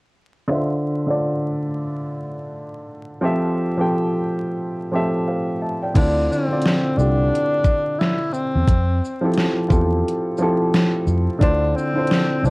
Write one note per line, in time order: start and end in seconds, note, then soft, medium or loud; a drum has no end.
0.47 0.98 D3 medium
0.47 0.98 D4 medium
0.47 0.99 F4 medium
0.47 0.99 C5 medium
0.52 1.00 E5 loud
1.06 2.24 D3 medium
1.06 2.25 D4 medium
1.06 2.25 F4 medium
1.06 2.26 C5 medium
1.06 2.26 D5 medium
3.21 3.71 F3 medium
3.21 3.71 C4 medium
3.21 3.72 G4 medium
3.21 3.72 A4 medium
3.21 3.73 E5 loud
3.78 4.84 F3 medium
3.78 4.84 C4 medium
3.78 4.84 G4 medium
3.78 4.85 A4 medium
3.78 4.85 G5 medium
4.92 5.87 F3 medium
4.92 5.87 C4 medium
4.92 5.88 G4 medium
4.92 5.88 A4 medium
4.92 5.28 E5 medium
5.28 5.60 C5 soft
5.28 5.60 F5 medium
5.62 5.82 E5 soft
5.62 5.82 A5 medium
5.82 5.96 D5 medium
5.82 6.15 G5 medium
5.94 6.27 D2 loud
5.94 6.44 D3 medium
5.94 6.44 C4 medium
5.94 6.33 D4 medium
5.94 6.45 E4 medium
5.94 6.45 F4 medium
5.94 6.45 D5 medium
5.94 kick loud
5.94 closed hi-hat medium
5.94 crash medium
6.31 6.99 C4 medium
6.31 shaker soft
6.48 6.92 D3 medium
6.48 6.93 C4 medium
6.48 6.94 E4 medium
6.48 6.94 F4 medium
6.52 6.94 D5 medium
6.62 snare medium
6.62 closed hi-hat medium
6.96 7.30 C2 medium
6.96 8.23 D3 medium
6.96 8.24 C4 medium
6.96 8.00 D4 loud
6.96 8.24 E4 medium
6.96 8.24 F4 medium
6.96 8.25 G4 medium
6.96 shaker soft
7.35 closed hi-hat medium
7.64 kick medium
7.64 shaker soft
7.99 8.34 E4 medium
7.99 snare loud
7.99 closed hi-hat medium
8.33 9.36 C4 medium
8.33 shaker soft
8.56 8.67 E2 medium
8.68 9.00 F2 loud
8.68 kick loud
8.68 closed hi-hat medium
9.05 shaker soft
9.21 9.65 F3 medium
9.21 9.66 C4 medium
9.21 9.66 E4 medium
9.21 9.67 G4 medium
9.26 9.67 A4 medium
9.34 snare medium
9.34 closed hi-hat medium
9.68 10.02 E2 medium
9.68 10.33 C4 medium
9.68 10.33 E4 medium
9.68 10.32 F4 medium
9.68 10.34 G4 medium
9.68 10.34 A4 medium
9.68 kick medium
9.68 shaker soft
10.08 closed hi-hat medium
10.38 11.33 F3 medium
10.38 11.34 C4 medium
10.38 11.34 E4 medium
10.38 shaker soft
10.42 11.35 G4 medium
10.42 11.35 A4 medium
10.74 snare loud
10.74 closed hi-hat medium
11.07 11.27 F2 loud
11.07 shaker soft
11.38 11.73 D2 loud
11.38 11.89 D3 medium
11.38 11.89 D4 medium
11.38 11.77 D4 loud
11.38 11.89 E4 medium
11.38 11.90 F4 medium
11.38 kick loud
11.38 closed hi-hat medium
11.43 11.91 C5 medium
11.76 12.47 C4 loud
11.76 shaker soft
11.94 12.38 D3 medium
11.94 12.38 D4 medium
11.94 12.39 E4 medium
11.94 12.39 F4 medium
11.98 12.40 C5 medium
12.07 snare medium
12.07 closed hi-hat medium
12.42 12.50 C2 medium
12.42 12.50 D3 medium
12.42 12.50 D4 medium
12.42 12.50 D4 loud
12.42 12.50 E4 medium
12.42 12.50 F4 medium
12.42 shaker soft
12.46 12.50 C5 medium